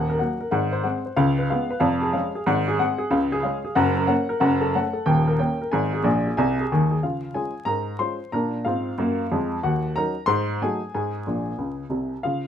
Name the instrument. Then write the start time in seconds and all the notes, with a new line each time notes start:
upright piano
Already playing: D#1 D#2 F#5
0.10 A#4
0.19 F#3 A#3 F#5
0.41 A#4
0.51 G#1 G#2 F#5
0.72 C5
0.83 G#3 C4 F#5
1.06 C5
1.16 C#2 C#3 F5
1.38 B4
1.50 G#3 B3 F5
1.71 B4
1.80 F1 F2 F5
2.02 G#4
2.13 G#3 C#4 F5
2.35 G#4
2.46 G#1 G#2 F#5
2.68 G#4
2.79 G#3 C4 F#5
2.98 G#4
3.11 C#2 C#3 F5
3.32 G#4
3.43 G#3 C#4 F5
3.65 G#4
3.75 F#1 F#2 F#5
3.97 A#4
4.07 A#3 C#4 F#5
4.29 A#4
4.40 F#1 F#2 F#5
4.61 A4
4.75 A3 C#4 F#5
4.93 A4
5.06 D#1 D#2 G5
5.28 A#4
5.39 A#3 C#4 G5
5.62 A#4
5.72 G#1 G#2 G#5
5.94 G#4
6.03 A#1 A#2 G#5
6.27 G#4
6.37 C2 C3 G#5
6.59 G#4
6.72 D#2 D#3 G#5
6.91 G#4
7.03 C#3 F4 F5
7.34 G#3 C#4 F4 G#4 G#5
7.65 G#2 A#4 A#5
7.99 G#3 C#4 F4 C5 C6
8.32 A#2 D4 A#4 A#5
8.65 G#2 C4 F4 F5
8.98 F#2 A#3
9.32 F2 G#3
9.63 D#2 F#4 F#5
9.96 F#3 C#4 D#4 A#4 A#5
10.26 G#2 C5 C6
10.62 F#3 A3 D#4 G#4 G#5
10.95 G#2 G#4 G#5
11.27 A#1 A#2
11.58 C#2 C#3
11.89 C2 C3
12.23 C#3 F4 F5